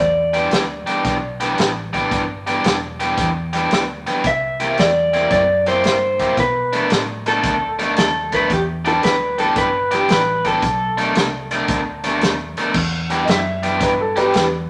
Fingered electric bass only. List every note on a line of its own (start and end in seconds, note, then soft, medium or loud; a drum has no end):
0.00 0.50 E2 medium
0.52 0.85 D2 medium
0.87 muted fingered electric bass stroke soft
1.05 1.57 B1 medium
1.59 2.10 A1 medium
2.11 2.63 G1 medium
2.65 3.17 E1 medium
3.18 3.70 E2 medium
3.71 4.04 D2 medium
4.07 muted fingered electric bass stroke soft
4.24 4.76 C2 medium
4.78 5.29 E2 medium
5.31 5.82 F#2 medium
5.85 6.36 G2 medium
6.37 6.89 B2 medium
6.91 7.42 A2 medium
7.44 7.95 D2 medium
7.97 8.49 D#2 medium
8.50 9.01 E2 medium
9.03 9.55 D2 medium
9.56 10.08 G1 medium
10.10 10.61 A1 medium
10.63 11.14 B1 medium
11.16 11.68 C2 medium
11.68 12.20 D2 medium
12.22 12.55 D#2 medium
12.58 muted fingered electric bass stroke soft
12.74 13.26 E2 medium
13.28 13.80 F#2 medium
13.81 14.33 G2 medium
14.35 14.70 E2 medium